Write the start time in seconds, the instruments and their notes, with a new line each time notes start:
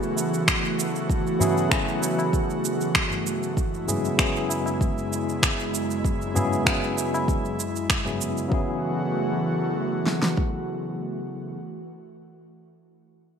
Already playing: tine electric piano C#3 F#3 B3 E4 G#4, analog synth pad E3 A3 F#4, singing bowl E3 E4
0.03 shaker
0.17 tabla tin, shaker
0.34 shaker
0.48 finger snap, kick, shaker
0.65 shaker
0.79 tabla tin, shaker
0.96 shaker
1.10 kick, shaker
1.27 shaker
1.39 tine electric piano C#3 F#3 B3 E4 G#4, tabla na, tabla tin, tabla ge, shaker
1.58 shaker
1.69 tine electric piano C#3 F#3 B3 E4 G#4, finger snap, kick, shaker
1.88 shaker
2.02 tabla na, shaker
2.18 tabla na, tabla tin, shaker
2.33 kick, shaker
2.50 shaker
2.65 shaker
2.81 shaker
2.95 finger snap, kick, shaker
3.10 tabla ge, shaker
3.27 shaker
3.43 shaker
3.57 analog synth pad F#2 G#3 E4, kick, shaker
3.74 shaker
3.87 tine electric piano C#3 F#3 B3 E4 G#4, tabla tin, tabla ge, shaker
4.04 tabla tin, shaker
4.17 tine electric piano C#3 F#3 B3 E4, finger snap, kick, shaker
4.21 tine electric piano G#4
4.36 shaker
4.50 tabla na, shaker
4.66 tabla na, tabla tin, shaker
4.81 kick, shaker
4.98 shaker
5.12 tabla tin, shaker
5.29 shaker
5.43 finger snap, kick, shaker
5.60 shaker
5.74 tabla tin, shaker
5.91 shaker
6.04 kick, shaker
6.22 shaker
6.34 tine electric piano C#3 F#3 B3 E4 G#4, tabla na, tabla tin, tabla ge, shaker
6.53 shaker
6.64 tine electric piano C#3 F#3 B3 E4 G#4, finger snap, kick, shaker
6.83 shaker
6.98 tabla na, shaker
7.14 tabla na, tabla tin, shaker
7.28 kick, shaker
7.45 shaker
7.60 shaker
7.76 shaker
7.90 finger snap, kick, shaker
8.04 tine electric piano C#3 F#3 B3 E4 G#4, tabla ge, shaker
8.21 shaker
8.37 shaker
8.48 tine electric piano C#3 F#3 B3, analog synth pad E3 A3 F#4, kick
8.52 tine electric piano E4 G#4
10.06 snare
10.22 snare
10.37 kick